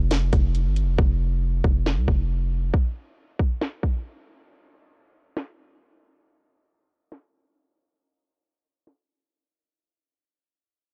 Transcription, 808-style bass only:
0, 0, Header, 1, 2, 480
1, 0, Start_track
1, 0, Tempo, 437956
1, 1078, Time_signature, 4, 2, 24, 8
1, 11987, End_track
2, 0, Start_track
2, 0, Title_t, "808-style bass"
2, 0, Program_c, 0, 38
2, 0, Note_on_c, 0, 29, 108
2, 340, Note_off_c, 0, 29, 0
2, 360, Note_on_c, 0, 29, 105
2, 719, Note_on_c, 0, 31, 98
2, 736, Note_off_c, 0, 29, 0
2, 899, Note_on_c, 0, 29, 105
2, 916, Note_off_c, 0, 31, 0
2, 1070, Note_off_c, 0, 29, 0
2, 1079, Note_on_c, 0, 29, 115
2, 1770, Note_off_c, 0, 29, 0
2, 1800, Note_on_c, 0, 29, 101
2, 2159, Note_on_c, 0, 36, 96
2, 2175, Note_off_c, 0, 29, 0
2, 2273, Note_off_c, 0, 36, 0
2, 2279, Note_on_c, 0, 29, 95
2, 2970, Note_off_c, 0, 29, 0
2, 11987, End_track
0, 0, End_of_file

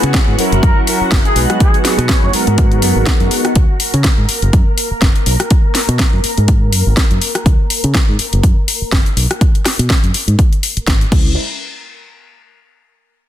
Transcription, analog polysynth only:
0, 0, Header, 1, 2, 480
1, 0, Start_track
1, 0, Tempo, 487805
1, 1581, Time_signature, 4, 2, 24, 8
1, 13075, End_track
2, 0, Start_track
2, 0, Title_t, "Analog polysynth"
2, 0, Program_c, 0, 90
2, 0, Note_on_c, 0, 56, 84
2, 0, Note_on_c, 0, 61, 78
2, 0, Note_on_c, 0, 64, 78
2, 0, Note_on_c, 0, 71, 95
2, 336, Note_off_c, 0, 56, 0
2, 339, Note_off_c, 0, 61, 0
2, 341, Note_off_c, 0, 64, 0
2, 344, Note_off_c, 0, 71, 0
2, 375, Note_on_c, 0, 54, 83
2, 381, Note_on_c, 0, 61, 80
2, 386, Note_on_c, 0, 64, 75
2, 390, Note_on_c, 0, 70, 88
2, 1296, Note_off_c, 0, 54, 0
2, 1299, Note_off_c, 0, 61, 0
2, 1302, Note_off_c, 0, 64, 0
2, 1304, Note_off_c, 0, 70, 0
2, 1333, Note_on_c, 0, 56, 83
2, 1338, Note_on_c, 0, 63, 76
2, 1341, Note_on_c, 0, 66, 76
2, 1347, Note_on_c, 0, 71, 94
2, 2255, Note_off_c, 0, 56, 0
2, 2257, Note_off_c, 0, 63, 0
2, 2259, Note_off_c, 0, 66, 0
2, 2262, Note_off_c, 0, 71, 0
2, 2293, Note_on_c, 0, 56, 88
2, 2299, Note_on_c, 0, 59, 82
2, 2302, Note_on_c, 0, 66, 86
2, 2307, Note_on_c, 0, 70, 105
2, 3455, Note_off_c, 0, 56, 0
2, 3458, Note_off_c, 0, 59, 0
2, 3460, Note_off_c, 0, 66, 0
2, 3462, Note_off_c, 0, 70, 0
2, 10931, Note_on_c, 0, 56, 84
2, 10938, Note_on_c, 0, 61, 82
2, 10947, Note_on_c, 0, 64, 79
2, 10953, Note_on_c, 0, 71, 96
2, 11120, Note_off_c, 0, 56, 0
2, 11124, Note_off_c, 0, 61, 0
2, 11129, Note_off_c, 0, 64, 0
2, 11132, Note_off_c, 0, 71, 0
2, 13075, End_track
0, 0, End_of_file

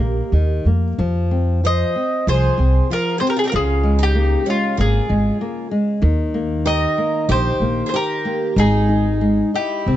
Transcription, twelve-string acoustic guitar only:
0, 0, Header, 1, 2, 480
1, 0, Start_track
1, 0, Key_signature, -4, "major"
1, 0, Tempo, 652174
1, 714, Time_signature, 4, 2, 24, 8
1, 1663, Tempo, 626305
1, 5023, Tempo, 644468
1, 7497, End_track
2, 0, Start_track
2, 0, Title_t, "Twelve-string acoustic guitar"
2, 0, Program_c, 0, 25
2, 0, Note_on_c, 0, 67, 64
2, 449, Note_off_c, 0, 67, 0
2, 1213, Note_on_c, 0, 72, 73
2, 1644, Note_off_c, 0, 72, 0
2, 1681, Note_on_c, 0, 68, 77
2, 2129, Note_off_c, 0, 68, 0
2, 2164, Note_on_c, 0, 65, 62
2, 2357, Note_off_c, 0, 65, 0
2, 2370, Note_on_c, 0, 68, 62
2, 2430, Note_off_c, 0, 68, 0
2, 2437, Note_on_c, 0, 67, 61
2, 2498, Note_off_c, 0, 67, 0
2, 2511, Note_on_c, 0, 65, 63
2, 2563, Note_off_c, 0, 65, 0
2, 2566, Note_on_c, 0, 67, 57
2, 2576, Note_off_c, 0, 67, 0
2, 2576, Note_on_c, 0, 67, 46
2, 2624, Note_off_c, 0, 67, 0
2, 2627, Note_on_c, 0, 65, 72
2, 2965, Note_off_c, 0, 65, 0
2, 2987, Note_on_c, 0, 63, 60
2, 3325, Note_off_c, 0, 63, 0
2, 3350, Note_on_c, 0, 61, 63
2, 3574, Note_off_c, 0, 61, 0
2, 3590, Note_on_c, 0, 65, 65
2, 4271, Note_off_c, 0, 65, 0
2, 5033, Note_on_c, 0, 70, 83
2, 5473, Note_off_c, 0, 70, 0
2, 5503, Note_on_c, 0, 67, 81
2, 5896, Note_off_c, 0, 67, 0
2, 5931, Note_on_c, 0, 68, 58
2, 5975, Note_off_c, 0, 68, 0
2, 5987, Note_on_c, 0, 67, 72
2, 6425, Note_off_c, 0, 67, 0
2, 6465, Note_on_c, 0, 63, 70
2, 7149, Note_off_c, 0, 63, 0
2, 7191, Note_on_c, 0, 64, 54
2, 7497, Note_off_c, 0, 64, 0
2, 7497, End_track
0, 0, End_of_file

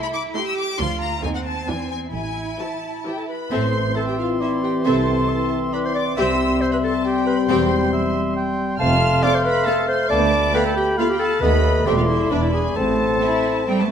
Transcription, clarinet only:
0, 0, Header, 1, 2, 480
1, 0, Start_track
1, 0, Key_signature, 0, "minor"
1, 0, Tempo, 440529
1, 865, Time_signature, 3, 2, 24, 8
1, 1828, Tempo, 457317
1, 4228, Tempo, 438917
1, 12868, Tempo, 453858
1, 15035, End_track
2, 0, Start_track
2, 0, Title_t, "Clarinet"
2, 0, Program_c, 0, 71
2, 3275, Note_on_c, 0, 67, 54
2, 3400, Note_on_c, 0, 69, 40
2, 3416, Note_off_c, 0, 67, 0
2, 3505, Note_off_c, 0, 69, 0
2, 3511, Note_on_c, 0, 71, 57
2, 3759, Note_on_c, 0, 72, 70
2, 3775, Note_off_c, 0, 71, 0
2, 4219, Note_off_c, 0, 72, 0
2, 4225, Note_on_c, 0, 69, 62
2, 4280, Note_off_c, 0, 69, 0
2, 4358, Note_on_c, 0, 67, 55
2, 4469, Note_off_c, 0, 67, 0
2, 4476, Note_on_c, 0, 65, 62
2, 4710, Note_off_c, 0, 65, 0
2, 4715, Note_on_c, 0, 64, 64
2, 4958, Note_on_c, 0, 67, 60
2, 4974, Note_off_c, 0, 64, 0
2, 5203, Note_on_c, 0, 69, 56
2, 5219, Note_off_c, 0, 67, 0
2, 5923, Note_off_c, 0, 69, 0
2, 6159, Note_on_c, 0, 71, 73
2, 6300, Note_on_c, 0, 72, 51
2, 6316, Note_off_c, 0, 71, 0
2, 6395, Note_off_c, 0, 72, 0
2, 6401, Note_on_c, 0, 74, 67
2, 6510, Note_off_c, 0, 74, 0
2, 6637, Note_on_c, 0, 76, 69
2, 7124, Note_on_c, 0, 72, 75
2, 7141, Note_off_c, 0, 76, 0
2, 7246, Note_off_c, 0, 72, 0
2, 7257, Note_on_c, 0, 71, 62
2, 7309, Note_off_c, 0, 71, 0
2, 7367, Note_on_c, 0, 69, 66
2, 7475, Note_off_c, 0, 69, 0
2, 7604, Note_on_c, 0, 67, 70
2, 7834, Note_off_c, 0, 67, 0
2, 7841, Note_on_c, 0, 71, 68
2, 7949, Note_off_c, 0, 71, 0
2, 8073, Note_on_c, 0, 72, 60
2, 8776, Note_off_c, 0, 72, 0
2, 9511, Note_on_c, 0, 77, 86
2, 9984, Note_on_c, 0, 74, 98
2, 10001, Note_off_c, 0, 77, 0
2, 10115, Note_on_c, 0, 72, 69
2, 10132, Note_off_c, 0, 74, 0
2, 10220, Note_off_c, 0, 72, 0
2, 10226, Note_on_c, 0, 71, 87
2, 10459, Note_on_c, 0, 69, 89
2, 10475, Note_off_c, 0, 71, 0
2, 10693, Note_off_c, 0, 69, 0
2, 10700, Note_on_c, 0, 72, 87
2, 10927, Note_off_c, 0, 72, 0
2, 10933, Note_on_c, 0, 74, 91
2, 11410, Note_off_c, 0, 74, 0
2, 11422, Note_on_c, 0, 71, 86
2, 11542, Note_off_c, 0, 71, 0
2, 11546, Note_on_c, 0, 69, 75
2, 11655, Note_off_c, 0, 69, 0
2, 11662, Note_on_c, 0, 67, 85
2, 11899, Note_off_c, 0, 67, 0
2, 11903, Note_on_c, 0, 65, 82
2, 12023, Note_off_c, 0, 65, 0
2, 12029, Note_on_c, 0, 67, 76
2, 12083, Note_off_c, 0, 67, 0
2, 12132, Note_on_c, 0, 69, 87
2, 12368, Note_on_c, 0, 71, 78
2, 12384, Note_off_c, 0, 69, 0
2, 12862, Note_on_c, 0, 67, 82
2, 12878, Note_off_c, 0, 71, 0
2, 12987, Note_on_c, 0, 65, 58
2, 13003, Note_off_c, 0, 67, 0
2, 13092, Note_on_c, 0, 64, 75
2, 13108, Note_off_c, 0, 65, 0
2, 13337, Note_off_c, 0, 64, 0
2, 13343, Note_on_c, 0, 62, 71
2, 13458, Note_on_c, 0, 64, 67
2, 13473, Note_off_c, 0, 62, 0
2, 13573, Note_off_c, 0, 64, 0
2, 13580, Note_on_c, 0, 68, 70
2, 13815, Note_on_c, 0, 69, 76
2, 13831, Note_off_c, 0, 68, 0
2, 15025, Note_off_c, 0, 69, 0
2, 15035, End_track
0, 0, End_of_file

